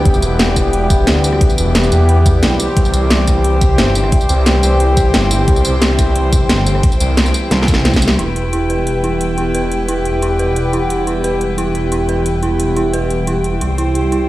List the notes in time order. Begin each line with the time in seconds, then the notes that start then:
Already playing: E3 G3 B3 E4 G4 B4 G5
0.05 E1, kick, closed hi-hat
0.14 tambourine
0.22 B3 E4 G4, closed hi-hat, tambourine
0.39 snare, closed hi-hat
0.48 cross-stick
0.56 E1, kick, cross-stick, closed hi-hat, tambourine
0.73 closed hi-hat
0.90 kick, closed hi-hat, tambourine
1.07 D2, snare, closed hi-hat
1.16 cross-stick
1.24 closed hi-hat, tambourine
1.33 cross-stick
1.41 kick, closed hi-hat
1.50 tambourine
1.58 E1 B3 E4 G4, closed hi-hat, tambourine
1.75 snare, closed hi-hat
1.83 cross-stick, tambourine
1.92 E2, closed hi-hat, tambourine
2.09 closed hi-hat
2.26 kick, closed hi-hat, tambourine
2.43 B1, snare, closed hi-hat
2.60 C4 E4 G4, closed hi-hat, tambourine
2.76 C2 C4 E4, kick, closed hi-hat
2.81 G5, tambourine
2.86 C5
2.94 C4 E4 G4, closed hi-hat, tambourine
3.10 snare, closed hi-hat
3.19 cross-stick
3.27 C2, kick, cross-stick, closed hi-hat, tambourine
3.44 closed hi-hat
3.61 kick, closed hi-hat, tambourine
3.78 G1, snare, closed hi-hat
3.87 cross-stick
3.95 closed hi-hat, tambourine
4.04 cross-stick
4.12 kick, closed hi-hat
4.21 tambourine
4.29 C2 C4 E4 G4, closed hi-hat, tambourine
4.46 snare, closed hi-hat
4.55 cross-stick
4.63 C2, closed hi-hat, tambourine
4.80 closed hi-hat
4.97 kick, closed hi-hat, tambourine
5.14 G1, snare, closed hi-hat
5.31 C4 E4 G4, closed hi-hat, tambourine
5.48 C2, kick, closed hi-hat
5.56 tambourine
5.65 C4 E4 G4, closed hi-hat, tambourine
5.82 snare, closed hi-hat
5.90 cross-stick
5.99 C2, kick, cross-stick, closed hi-hat, tambourine
6.16 closed hi-hat
6.33 kick, closed hi-hat, tambourine
6.49 G1, snare, closed hi-hat
6.58 cross-stick
6.66 closed hi-hat, tambourine
6.75 cross-stick
6.83 kick, closed hi-hat
6.92 tambourine
7.00 C2, closed hi-hat, tambourine
7.17 snare, closed hi-hat
7.26 cross-stick, tambourine
7.34 closed hi-hat, tambourine
7.51 C2, snare, closed hi-hat
7.62 snare
7.68 kick, closed hi-hat, tambourine
7.74 snare
7.85 snare, closed hi-hat
7.94 kick, snare, tambourine
8.02 C4 E4 G4, closed hi-hat, tambourine
8.08 snare
8.19 E1 E3 G3 B3 E4 G4 B4, closed hi-hat
8.36 B3 E4 G4, closed hi-hat
8.53 E4, closed hi-hat
8.70 B4, closed hi-hat
8.87 closed hi-hat
9.04 E4, closed hi-hat
9.21 closed hi-hat
9.38 E4, closed hi-hat
9.55 B4, closed hi-hat
9.71 B3 E4 G4, closed hi-hat
9.88 E4, closed hi-hat
10.05 closed hi-hat
10.22 E4, closed hi-hat
10.39 B4, closed hi-hat
10.56 closed hi-hat
10.73 B3 E4 G4, closed hi-hat
10.90 closed hi-hat
11.07 B3 E4 G4, closed hi-hat
11.24 B4, closed hi-hat
11.41 closed hi-hat
11.58 E4, closed hi-hat
11.75 closed hi-hat
11.92 E4, closed hi-hat
12.09 B4, closed hi-hat
12.26 closed hi-hat
12.43 B3 E4 G4, closed hi-hat
12.60 closed hi-hat
12.76 E4, closed hi-hat
12.93 B4, closed hi-hat
13.10 closed hi-hat
13.27 E4, closed hi-hat
13.44 B3 E4 G4, closed hi-hat
13.61 C2 C4 E4, closed hi-hat
13.69 C5
13.78 C4 E4 G4, closed hi-hat
13.95 closed hi-hat
14.12 E4, closed hi-hat